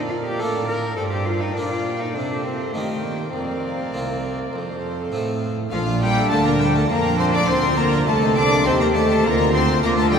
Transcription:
0.00 0.35 A#2 soft
0.00 0.39 A#2 medium
0.00 0.98 A#4 soft
0.00 0.96 D5 medium
0.00 0.38 F5 soft
0.08 0.14 F4 medium
0.25 0.41 G4 medium
0.39 0.94 A2 soft
0.39 0.98 A2 medium
0.39 0.82 A#3 soft
0.39 0.82 D4 soft
0.39 0.67 A4 medium
0.39 0.96 F5 soft
0.67 0.96 A#4 medium
0.96 1.55 G2 medium
0.96 1.53 G2 soft
0.96 1.02 A4 medium
0.96 1.55 C5 soft
0.96 1.56 D5 soft
0.96 2.72 G5 soft
1.11 1.27 G4 medium
1.25 1.41 F4 medium
1.40 1.57 D#4 medium
1.55 2.11 A#2 soft
1.55 2.14 A#2 soft
1.55 1.99 A#3 soft
1.55 1.70 D4 medium
1.55 2.00 D4 soft
1.55 2.15 A#4 soft
1.55 2.14 D5 soft
1.70 2.01 F4 medium
1.99 2.15 D#4 medium
2.13 2.74 C3 medium
2.13 2.70 C3 soft
2.13 2.45 D4 medium
2.13 2.73 A4 soft
2.13 3.34 C5 soft
2.43 2.73 C4 medium
2.72 3.30 D#3 soft
2.72 3.34 D#3 soft
2.72 3.05 A3 medium
2.72 3.18 A#3 soft
2.72 3.18 D#4 soft
2.72 3.33 G4 soft
2.72 3.32 G5 soft
3.03 3.33 A#3 medium
3.33 3.89 F2 soft
3.33 3.92 F2 medium
3.33 5.08 C4 medium
3.33 4.50 A#4 medium
3.33 4.51 D5 soft
3.33 4.52 F5 soft
3.94 4.49 C2 soft
3.94 4.52 C2 soft
3.94 4.37 A#3 soft
3.94 4.37 C4 soft
4.52 5.11 F2 soft
4.52 5.08 F2 soft
4.52 5.51 A4 soft
4.52 5.52 C5 soft
4.52 5.50 F5 soft
5.12 5.67 A2 soft
5.12 5.72 A2 medium
5.12 5.55 A3 soft
5.12 5.55 C4 soft
5.71 6.26 A#1 medium
5.71 6.27 A#2 medium
5.71 5.80 F3 medium
5.71 6.85 D4 medium
5.71 5.99 F4 medium
5.71 5.99 F5 medium
5.87 6.02 F4 medium
6.00 6.32 G3 medium
6.00 6.17 A#3 medium
6.00 6.31 G4 medium
6.00 6.30 G5 loud
6.16 6.31 A3 soft
6.30 6.88 D2 medium
6.30 6.88 D3 medium
6.30 6.86 D3 medium
6.30 6.45 A3 medium
6.30 6.47 A#3 medium
6.30 6.46 A4 medium
6.30 6.45 A5 loud
6.45 6.52 A#3 medium
6.45 6.61 A#4 medium
6.45 6.60 A#5 medium
6.60 6.76 G3 medium
6.60 6.75 G4 medium
6.60 6.75 C5 soft
6.60 6.75 G5 medium
6.74 6.87 A3 medium
6.74 6.90 A4 medium
6.74 6.91 A#4 medium
6.74 6.90 A5 medium
6.88 7.48 F2 medium
6.88 7.48 F3 medium
6.88 7.44 F3 medium
6.88 7.19 A#3 medium
6.88 7.47 D4 medium
6.88 7.19 A#4 medium
6.88 7.19 A#5 loud
7.04 7.20 F4 medium
7.17 7.34 A#3 medium
7.17 7.33 C4 medium
7.17 7.33 C5 medium
7.17 7.25 C6 loud
7.31 7.48 A3 medium
7.31 7.49 D4 medium
7.31 7.49 D5 medium
7.31 7.48 D6 medium
7.47 8.06 D2 medium
7.47 8.07 D3 medium
7.47 8.03 D3 medium
7.47 7.63 A#3 medium
7.47 7.78 C4 medium
7.47 8.07 F4 medium
7.47 7.78 C5 medium
7.47 7.77 C6 loud
7.62 7.78 A#4 medium
7.77 8.07 A#3 medium
7.77 8.06 A#4 medium
7.77 7.92 C5 soft
7.77 8.07 A#5 loud
7.92 8.07 A#4 medium
8.06 8.64 C2 medium
8.06 8.61 C3 medium
8.06 8.64 C3 medium
8.06 8.38 A3 medium
8.06 8.66 A4 medium
8.06 8.36 A4 medium
8.06 8.36 A5 loud
8.21 8.37 D#4 medium
8.35 8.51 C4 medium
8.35 8.67 D4 medium
8.35 8.66 D5 medium
8.35 8.65 D6 loud
8.50 8.65 A#3 soft
8.65 9.24 D#2 medium
8.65 9.20 D#3 medium
8.65 9.24 D#3 medium
8.65 8.81 C4 medium
8.65 8.82 C4 medium
8.65 9.24 G4 medium
8.65 8.81 C5 medium
8.65 8.80 C6 medium
8.80 8.96 A#3 medium
8.80 8.95 A#4 medium
8.80 8.96 C5 medium
8.80 8.86 A#5 loud
8.94 9.25 A3 medium
8.94 9.24 A4 medium
8.94 9.09 D5 soft
8.94 9.24 A5 loud
9.10 9.25 C5 medium
9.23 9.81 D2 medium
9.23 9.82 D2 medium
9.23 9.79 D2 medium
9.23 9.52 A#3 medium
9.23 9.81 F4 medium
9.23 9.54 A#4 medium
9.23 9.54 A#5 loud
9.40 9.55 A#4 medium
9.52 9.82 C4 medium
9.52 9.70 D4 medium
9.52 9.83 C5 medium
9.52 9.82 C6 loud
9.69 9.83 C4 medium
9.82 10.19 D2 medium
9.82 10.19 D3 medium
9.82 9.96 A#3 medium
9.82 9.99 D4 medium
9.82 10.19 F4 medium
9.82 9.97 A#4 medium
9.82 9.89 A#5 loud
9.96 10.03 A3 medium
9.96 10.12 A4 medium
9.96 10.13 D5 medium
9.96 10.12 A5 loud
10.11 10.17 G3 medium
10.11 10.19 G4 medium
10.11 10.19 D#5 medium
10.11 10.19 G5 loud

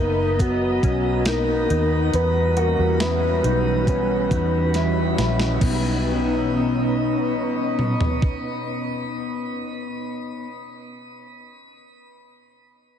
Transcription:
0.00 0.79 F#1 medium
0.00 2.09 B3 medium
0.00 0.39 D#4 medium
0.00 0.43 A#4 loud
0.00 2.09 D#5 medium
0.39 0.83 B3 medium
0.39 1.29 F#4 medium
0.39 kick medium
0.39 closed hi-hat medium
0.83 1.66 B1 medium
0.83 1.27 C#4 medium
0.83 kick medium
0.83 closed hi-hat soft
1.25 1.69 D#4 medium
1.25 1.92 A#4 medium
1.25 snare medium
1.25 closed hi-hat medium
1.70 2.11 D#2 medium
1.70 2.13 D#4 medium
1.70 closed hi-hat soft
2.12 2.75 E2 medium
2.12 5.57 E3 medium
2.12 5.57 G3 medium
2.12 5.57 C#4 medium
2.12 5.57 F#4 medium
2.12 2.60 B4 medium
2.12 closed hi-hat soft
2.57 3.00 F#4 medium
2.57 3.03 A#4 medium
2.57 closed hi-hat soft
2.79 3.41 E2 medium
3.00 3.44 E4 medium
3.00 3.88 B4 medium
3.00 snare medium
3.00 closed hi-hat medium
3.44 4.27 B1 medium
3.44 3.87 D#4 medium
3.44 closed hi-hat soft
3.87 4.31 C#4 medium
3.87 4.71 B4 medium
3.87 kick medium
3.87 closed hi-hat medium
4.31 5.14 E2 medium
4.31 4.75 D#4 medium
4.31 kick medium
4.31 closed hi-hat soft
4.74 5.17 E4 medium
4.74 snare soft
4.74 closed hi-hat medium
5.18 5.59 A#1 medium
5.18 5.61 E4 medium
5.18 snare medium
5.18 closed hi-hat soft
5.40 snare medium
5.60 10.46 B1 medium
5.60 9.84 B2 medium
5.60 9.85 B3 medium
5.60 10.46 B3 medium
5.60 9.85 C#4 medium
5.60 9.85 D#4 medium
5.60 9.85 A#5 medium
5.60 kick medium
5.60 crash medium
5.65 10.50 D#4 medium
5.65 5.73 F#4 medium
5.74 10.58 B4 medium
7.79 mid tom soft
8.01 floor tom medium
8.22 kick medium

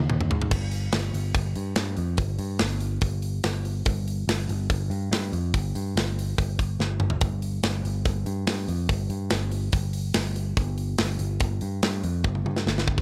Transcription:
0.10 0.29 D#2 medium
0.10 mid tom medium
0.21 mid tom medium
0.30 0.50 G#2 medium
0.30 floor tom medium
0.42 floor tom medium
0.51 0.88 G1 medium
0.51 kick loud
0.51 crash loud
0.71 open hi-hat medium
0.92 1.11 G1 medium
0.92 snare loud
0.92 open hi-hat medium
1.14 1.32 G1 medium
1.14 open hi-hat medium
1.35 1.53 G1 medium
1.35 kick loud
1.35 open hi-hat medium
1.55 1.74 G2 medium
1.55 open hi-hat medium
1.76 1.95 G2 medium
1.76 snare loud
1.76 open hi-hat medium
1.97 2.16 F2 medium
1.97 open hi-hat medium
2.17 2.37 G1 medium
2.17 kick loud
2.17 open hi-hat medium
2.39 2.57 G2 medium
2.39 open hi-hat medium
2.59 2.97 G1 loud
2.59 snare loud
2.59 open hi-hat medium
2.80 open hi-hat medium
3.01 3.39 G1 medium
3.01 kick loud
3.01 open hi-hat medium
3.22 open hi-hat medium
3.44 3.81 G1 medium
3.44 snare loud
3.44 open hi-hat medium
3.65 open hi-hat medium
3.85 4.23 G1 loud
3.85 kick loud
3.85 open hi-hat medium
4.08 open hi-hat medium
4.28 4.46 G1 medium
4.28 snare loud
4.28 open hi-hat medium
4.49 4.68 G1 medium
4.49 open hi-hat medium
4.70 4.89 G1 medium
4.70 kick loud
4.70 open hi-hat medium
4.90 5.09 G2 medium
4.90 open hi-hat medium
5.11 5.30 G2 medium
5.11 snare loud
5.11 open hi-hat medium
5.33 5.51 F2 medium
5.33 open hi-hat medium
5.54 5.72 G1 loud
5.54 kick loud
5.54 open hi-hat medium
5.75 5.94 G2 medium
5.75 open hi-hat medium
5.96 6.33 G1 medium
5.96 snare loud
5.96 open hi-hat medium
6.19 open hi-hat medium
6.38 6.75 G1 medium
6.38 kick loud
6.38 open hi-hat medium
6.59 kick medium
6.59 open hi-hat medium
6.79 7.17 G1 medium
6.79 snare medium
7.00 mid tom medium
7.10 floor tom medium
7.21 7.59 G1 loud
7.21 kick loud
7.21 open hi-hat medium
7.42 open hi-hat medium
7.63 7.82 G1 medium
7.63 snare loud
7.63 open hi-hat medium
7.84 8.03 G1 medium
7.84 open hi-hat medium
8.05 8.24 G1 medium
8.05 kick loud
8.05 open hi-hat medium
8.26 8.45 G2 medium
8.26 open hi-hat medium
8.47 8.66 G2 medium
8.47 snare loud
8.47 open hi-hat medium
8.68 8.87 F2 medium
8.68 open hi-hat medium
8.89 9.08 G1 loud
8.89 kick loud
8.89 open hi-hat medium
9.10 9.29 G2 medium
9.10 open hi-hat medium
9.30 9.68 G1 medium
9.30 snare loud
9.30 open hi-hat medium
9.51 open hi-hat medium
9.72 10.10 G1 medium
9.72 kick loud
9.72 open hi-hat medium
9.93 open hi-hat medium
10.14 10.52 G1 medium
10.14 snare loud
10.14 open hi-hat medium
10.36 open hi-hat medium
10.57 10.94 G1 medium
10.57 kick loud
10.57 open hi-hat medium
10.78 open hi-hat medium
10.98 11.17 G1 medium
10.98 snare loud
10.98 open hi-hat medium
11.19 11.38 G1 medium
11.19 open hi-hat medium
11.40 11.59 G1 medium
11.40 kick loud
11.40 open hi-hat medium
11.61 11.80 G2 medium
11.61 open hi-hat medium
11.83 12.01 G2 medium
11.83 snare loud
11.83 open hi-hat medium
12.03 12.22 F2 medium
12.03 open hi-hat medium
12.24 12.43 G1 loud
12.24 kick loud
12.24 high tom medium
12.35 high tom medium
12.45 12.64 G2 medium
12.45 high tom medium
12.56 snare medium
12.66 13.02 G1 loud
12.66 snare medium
12.78 snare medium
12.88 kick medium
12.98 kick medium

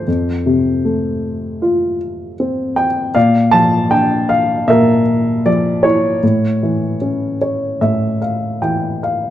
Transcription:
0.00 2.73 A4 soft
0.00 2.86 C5 medium
0.08 3.11 F2 soft
0.46 1.96 C3 soft
0.85 2.35 A3 soft
1.62 3.10 F4 medium
2.40 3.13 C4 soft
2.76 3.15 G5 medium
3.15 4.66 A#2 medium
3.15 4.64 D5 medium
3.15 3.53 F5 medium
3.51 5.02 F3 soft
3.51 3.91 A5 medium
3.91 5.41 D4 soft
3.91 4.31 G5 medium
4.29 4.69 F5 medium
4.68 6.19 A#2 medium
4.68 6.20 A#4 medium
4.68 5.47 E5 medium
5.46 6.21 F3 soft
5.46 5.85 D5 medium
5.83 7.37 E4 soft
5.83 6.97 C#5 medium
6.23 7.80 A2 medium
6.63 8.17 E3 soft
7.02 8.57 C#4 soft
7.41 7.78 C#5 soft
7.81 9.30 A2 soft
7.81 8.18 E5 medium
8.22 8.59 F5 soft
8.62 9.30 E3 soft
8.62 9.00 G5 medium
9.03 9.30 F5 medium

